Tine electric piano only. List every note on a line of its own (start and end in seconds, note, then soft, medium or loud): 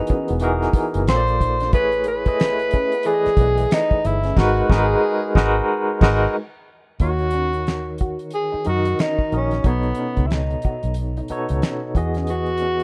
0.00 0.41 E3 medium
0.00 0.42 B3 medium
0.00 0.42 D#4 medium
0.00 0.43 F#4 medium
0.00 0.43 G#4 medium
0.00 0.44 A#4 medium
0.00 0.38 B4 medium
0.41 1.07 E3 medium
0.41 1.07 B3 medium
0.41 1.07 D#4 medium
0.41 1.08 F#4 medium
0.41 1.08 G#4 medium
0.41 1.08 A#4 medium
1.08 1.70 A#3 medium
1.08 1.70 F4 medium
1.08 1.71 A4 medium
1.08 1.71 C5 medium
1.08 1.16 C#5 medium
1.16 1.74 D5 medium
1.73 2.22 A3 medium
1.73 2.22 E4 medium
1.73 2.23 G#4 medium
1.73 2.23 B4 medium
1.73 2.23 C#5 medium
2.27 3.01 A3 medium
2.27 3.01 E4 medium
2.27 3.01 G#4 medium
2.27 3.02 B4 medium
2.27 3.02 D#5 medium
3.05 4.30 E3 medium
3.05 4.30 A3 medium
3.05 4.31 G#4 medium
3.05 4.31 B4 medium
3.05 3.14 D5 medium
3.14 4.34 D#5 medium
4.36 4.60 G#3 loud
4.36 4.61 D#4 loud
4.36 4.61 F#4 loud
4.36 4.61 A#4 loud
4.36 4.61 B4 loud
4.70 4.93 G#3 medium
4.70 4.93 D#4 medium
4.70 4.94 F#4 medium
4.70 4.94 A#4 medium
4.70 4.95 B4 loud
5.36 5.59 G#3 loud
5.36 5.60 D#4 loud
5.36 5.60 F#4 loud
5.36 5.60 A#4 loud
5.36 5.60 B4 loud
6.02 6.25 G#3 loud
6.02 6.25 D#4 medium
6.02 6.26 F#4 medium
6.02 6.26 A#4 loud
6.02 6.27 B4 loud
7.01 8.26 D#3 medium
7.01 8.26 D#4 medium
7.01 8.26 F#4 medium
7.01 8.26 A#4 medium
7.01 8.27 C#5 medium
8.65 9.28 D#3 medium
8.65 9.28 D#4 medium
8.65 9.28 F#4 medium
8.65 9.29 A#4 medium
8.65 9.29 D#5 medium
9.32 9.63 D#3 medium
9.32 9.63 D#4 soft
9.32 9.63 F#4 soft
9.32 9.64 A#4 soft
9.32 9.64 D#5 medium
9.64 10.89 B2 medium
9.64 10.90 B3 medium
9.64 10.90 D#4 medium
9.64 10.90 A4 medium
9.64 10.91 C#5 medium
11.29 11.92 B2 medium
11.29 11.92 B3 medium
11.29 11.92 D#4 medium
11.29 11.93 A4 medium
11.29 11.93 C#5 loud
11.95 12.83 E3 medium
11.95 12.83 B3 medium
11.95 12.83 F#4 medium
11.95 12.83 G#4 medium
11.95 12.83 D#5 medium